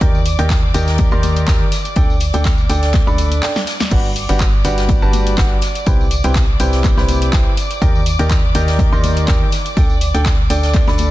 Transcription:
Already playing: string section D5 D6
0.01 fm bass D#2, grand piano D#3 D#4 G4 A#4 D5 G5, kick, closed hi-hat, tambourine
0.15 tambourine
0.25 closed hi-hat, open hi-hat, tambourine
0.38 fm bass D#2, grand piano D#3 D#4 G4 A#4 D5 G5, closed hi-hat, tambourine
0.50 kick, snare, clap, closed hi-hat, tambourine
0.74 fm bass D#2, grand piano D#3 D#4 G4 A#4 D5 G5, closed hi-hat, open hi-hat, tambourine
0.88 snare, closed hi-hat, tambourine
0.98 kick, closed hi-hat, tambourine, high conga
1.11 fm bass D#2, grand piano D#3 D#4 G4 A#4 D5 C6, tambourine
1.23 closed hi-hat, open hi-hat, tambourine, high conga
1.36 closed hi-hat, tambourine
1.47 fm bass D#2, grand piano D#3 D#4 G4 A#4 D5 G5, kick, snare, clap, closed hi-hat
1.72 snare, closed hi-hat, open hi-hat, tambourine
1.85 closed hi-hat, tambourine
1.96 fm bass D2, grand piano D4 A4 D5 G5, kick, closed hi-hat, tambourine
2.10 tambourine
2.20 closed hi-hat, open hi-hat, tambourine
2.33 fm bass D2, grand piano D4 A4 D5 G5, closed hi-hat, tambourine, high conga
2.44 kick, snare, clap, closed hi-hat, tambourine
2.58 tambourine
2.69 fm bass D2, grand piano D4 A4 D5 G5, closed hi-hat, open hi-hat, tambourine
2.83 snare, closed hi-hat, tambourine
2.93 kick, snare, clap, closed hi-hat, tambourine, high conga
3.07 fm bass D2, grand piano D4 A4 D5 B5, tambourine
3.17 closed hi-hat, open hi-hat, tambourine, high conga
3.32 closed hi-hat, tambourine
3.42 grand piano D4 A4 D5 G5, snare, clap, closed hi-hat, tambourine
3.55 snare, closed hi-hat, tambourine
3.67 snare, closed hi-hat, open hi-hat, tambourine
3.80 snare, closed hi-hat, tambourine, high conga
3.91 fm bass G1, grand piano G3 D4 F#4 G4 B4 F#5, string section D5 D6, kick, closed hi-hat, crash, tambourine
4.05 tambourine
4.16 closed hi-hat, open hi-hat, tambourine
4.29 fm bass G1, grand piano G3 D4 F#4 G4 B4 F#5, closed hi-hat, tambourine
4.40 kick, snare, clap, closed hi-hat, tambourine
4.65 fm bass G1, grand piano G3 D4 F#4 G4 B4 F#5, closed hi-hat, open hi-hat, tambourine
4.78 snare, closed hi-hat, tambourine
4.88 kick, closed hi-hat, tambourine, high conga
5.02 fm bass G1, grand piano G3 D4 F#4 G4 B4 A5, tambourine
5.13 closed hi-hat, open hi-hat, tambourine, high conga
5.27 closed hi-hat, tambourine
5.38 fm bass G1, grand piano G3 D4 F#4 G4 B4 F#5, kick, snare, clap, closed hi-hat, tambourine
5.62 snare, closed hi-hat, open hi-hat, tambourine
5.75 closed hi-hat, tambourine
5.86 fm bass C2, grand piano C3 E4 G4 B4 C5 G5, kick, closed hi-hat, tambourine
6.01 tambourine
6.11 closed hi-hat, open hi-hat, tambourine
6.24 fm bass C2, grand piano C3 E4 G4 B4 C5 G5, closed hi-hat, tambourine
6.35 kick, snare, clap, closed hi-hat, tambourine
6.60 fm bass C2, grand piano C3 E4 G4 B4 C5 G5, closed hi-hat, open hi-hat, tambourine
6.73 snare, closed hi-hat, tambourine
6.84 kick, clap, closed hi-hat, tambourine, high conga
6.97 fm bass C2, grand piano C3 E4 G4 B4 C5 B5, snare, tambourine
7.09 closed hi-hat, open hi-hat, tambourine, high conga
7.22 closed hi-hat, tambourine
7.33 fm bass C2, grand piano E4 G4 B4 C5 G5, kick, snare, clap, closed hi-hat, tambourine
7.57 closed hi-hat, open hi-hat, tambourine
7.71 closed hi-hat, tambourine
7.82 fm bass D#2, grand piano D#3 D#4 G4 A#4 D5 G5, kick, closed hi-hat, tambourine
7.95 tambourine
8.06 closed hi-hat, open hi-hat, tambourine
8.19 fm bass D#2, grand piano D#3 D#4 G4 A#4 D5 G5, closed hi-hat, tambourine
8.30 kick, snare, clap, closed hi-hat, tambourine
8.55 fm bass D#2, grand piano D#3 D#4 G4 A#4 D5 G5, closed hi-hat, open hi-hat, tambourine
8.68 snare, closed hi-hat, tambourine
8.79 kick, closed hi-hat, tambourine, high conga
8.92 fm bass D#2, grand piano D#3 D#4 G4 A#4 D5 C6, tambourine
9.03 closed hi-hat, open hi-hat, tambourine, high conga
9.16 closed hi-hat, tambourine
9.28 fm bass D#2, grand piano D#3 D#4 G4 A#4 D5 G5, kick, snare, clap, closed hi-hat, tambourine
9.52 snare, closed hi-hat, open hi-hat, tambourine
9.65 closed hi-hat, tambourine
9.77 fm bass D2, grand piano D4 A4 D5 G5, kick, closed hi-hat, tambourine
9.90 tambourine
10.01 closed hi-hat, open hi-hat, tambourine
10.14 fm bass D2, grand piano D4 A4 D5 G5, closed hi-hat, tambourine
10.25 kick, snare, clap, closed hi-hat, tambourine
10.50 fm bass D2, grand piano D4 A4 D5 G5, closed hi-hat, open hi-hat, tambourine
10.63 snare, closed hi-hat, tambourine
10.74 kick, clap, closed hi-hat, tambourine, high conga
10.87 fm bass D2, grand piano D4 A4 D5 B5, snare, tambourine
10.98 closed hi-hat, open hi-hat, tambourine, high conga

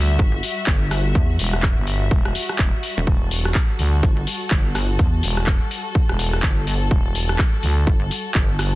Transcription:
Already playing: fm bass D2, string section G3 F#4 E5
0.10 shaker
0.19 wobble bass G1, kick, shaker
0.34 shaker
0.43 open hi-hat, shaker
0.57 shaker
0.67 wobble bass G1, kick, clap, shaker
0.82 shaker
0.91 cross-stick, open hi-hat, shaker
1.05 shaker
1.15 wobble bass E2, kick, shaker
1.29 shaker
1.39 fm bass E1, open hi-hat, shaker
1.53 cross-stick, shaker
1.63 kick, clap, shaker
1.77 fm bass G1, shaker
1.87 open hi-hat, shaker
2.03 shaker
2.11 fm bass E1, kick, shaker
2.25 cross-stick, shaker
2.35 open hi-hat, shaker
2.49 cross-stick, shaker
2.59 fm bass E1, kick, clap, shaker
2.73 shaker
2.83 open hi-hat, shaker
2.97 wobble bass E1, shaker
3.07 fm bass E1, string section A4, kick, shaker
3.21 shaker
3.31 open hi-hat, shaker
3.45 cross-stick, shaker
3.55 kick, clap, shaker
3.70 shaker
3.79 fm bass D2, open hi-hat, shaker
3.93 shaker
4.03 wobble bass G1, kick, shaker
4.17 shaker
4.27 open hi-hat, shaker
4.41 shaker
4.51 wobble bass G1, kick, clap, shaker
4.65 shaker
4.75 cross-stick, open hi-hat, shaker
4.89 shaker
4.99 wobble bass E2, kick, shaker
5.13 shaker
5.23 fm bass E1, open hi-hat, shaker
5.37 cross-stick, shaker
5.46 kick, clap, shaker
5.61 shaker
5.71 open hi-hat, shaker
5.85 shaker
5.95 kick, shaker
6.09 fm bass E1, cross-stick, shaker
6.19 open hi-hat, shaker
6.33 cross-stick, shaker
6.43 wobble bass G1, kick, clap, shaker
6.58 shaker
6.67 open hi-hat, shaker
6.81 shaker
6.90 fm bass E1, kick, shaker
7.06 shaker
7.15 open hi-hat, shaker
7.29 cross-stick, shaker
7.39 kick, clap, shaker
7.53 shaker
7.62 fm bass D2, open hi-hat, shaker
7.77 shaker
7.87 wobble bass G1, kick, shaker
8.01 shaker
8.11 open hi-hat, shaker
8.25 shaker
8.34 wobble bass G1, kick, clap, shaker
8.49 shaker
8.59 cross-stick, open hi-hat, shaker

